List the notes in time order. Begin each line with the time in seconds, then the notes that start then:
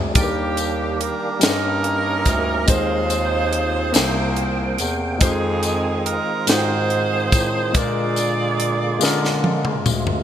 Already playing: D2 G#3 C4 D4 F4 G#4 F5 G#5 A#5 D6
0.14 D#2 D#3 G3 A#3 D4 G4 A4, kick, closed hi-hat, tambourine
0.18 A#3 G4
0.24 A#4
0.57 closed hi-hat, tambourine
1.01 A#4, closed hi-hat
1.39 G2 G3 C#4 D#4 G#4, snare, closed hi-hat, tambourine
1.43 A#4
1.50 A#4
1.84 closed hi-hat
2.26 D2, kick, closed hi-hat, tambourine
2.66 D#2 D#3 G#3 C4 D#4 F4 G#4 C5, kick, closed hi-hat, tambourine
3.10 closed hi-hat, tambourine
3.53 closed hi-hat
3.92 C2 C3 A#3 C5 E5 G5, snare, closed hi-hat, tambourine
4.36 closed hi-hat
4.78 E2, closed hi-hat, tambourine
5.18 F2 D#3 G#3 C4 D#4 F4 C5, kick, closed hi-hat, tambourine
5.23 C4 D#4 G#4
5.63 closed hi-hat, tambourine
6.06 A#4, closed hi-hat
6.47 G#2 G#3 D#4 F4 F#4 G#4 C5, snare, closed hi-hat, tambourine
6.57 G5
6.90 closed hi-hat
7.32 A2, kick, closed hi-hat, tambourine
7.73 A#2 D3 G#3 A#3 D4 F4 G#4 A#4 D5, kick, closed hi-hat, tambourine
8.16 closed hi-hat, tambourine
8.60 closed hi-hat
8.99 D3 G#3 C#4 F4 A#4, tambourine
9.04 D4, snare
9.25 snare
9.44 high tom
9.65 mid tom
9.85 D2, mid tom, tambourine
10.07 floor tom